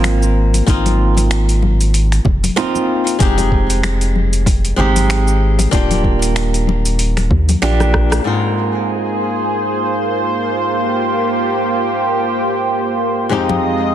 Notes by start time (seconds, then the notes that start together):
Already playing: G#1 A#3 C4 D#4 F4
0.04 finger snap, open hi-hat, muted conga, cabasa
0.23 cabasa
0.54 open hi-hat, muted conga, cabasa
0.66 G#1 A#3 C4 D#4 F4, kick, open hi-hat, cabasa
0.86 open hi-hat, high conga, cabasa
1.17 open hi-hat, muted conga, cabasa
1.31 finger snap, open hi-hat, cabasa
1.49 open hi-hat, cabasa
1.62 muted conga, high conga
1.81 open hi-hat, cabasa
1.94 open hi-hat, cabasa
2.12 finger snap, open hi-hat, cabasa
2.25 F1, kick, muted conga, low conga
2.44 open hi-hat, high conga, cabasa
2.56 A#3 C4 D#4 F4, finger snap, open hi-hat, cabasa
2.75 muted conga, cabasa
3.07 open hi-hat, cabasa
3.19 F1 G#3 C4 D#4 G4, kick, open hi-hat, cabasa
3.38 open hi-hat, muted conga, high conga, cabasa
3.52 kick
3.70 open hi-hat, cabasa
3.83 finger snap, open hi-hat, muted conga, cabasa
4.01 open hi-hat, cabasa
4.16 high conga
4.33 open hi-hat, cabasa
4.46 kick, open hi-hat, muted conga, cabasa
4.65 open hi-hat, cabasa
4.76 G#1 G#3 C4 D#4 G4, low conga
4.96 open hi-hat, muted conga, high conga, cabasa
5.10 finger snap, open hi-hat, cabasa
5.28 cabasa
5.59 open hi-hat, muted conga, cabasa
5.71 D#1 A#3 D4 F4 G4, kick, open hi-hat, cabasa
5.91 open hi-hat, high conga, cabasa
6.04 kick, muted conga
6.22 open hi-hat, cabasa
6.36 finger snap, open hi-hat, cabasa
6.54 open hi-hat, cabasa
6.67 muted conga, high conga
6.86 open hi-hat, cabasa
6.99 open hi-hat, cabasa
7.17 finger snap, open hi-hat, muted conga, cabasa
7.31 D#2, kick, low conga
7.49 open hi-hat, high conga, cabasa
7.62 A#1 A#3 D4 F4 G4, finger snap, open hi-hat, cabasa
7.80 cross-stick, muted conga, cabasa
7.94 kick, cross-stick
8.12 cross-stick, open hi-hat, cabasa
8.24 G#2 A#3 C4 D#4 F4 G#4 C5
10.78 G4
13.29 F2 G#3 C4 D#4 F4 G4 D#5
13.49 muted conga, high conga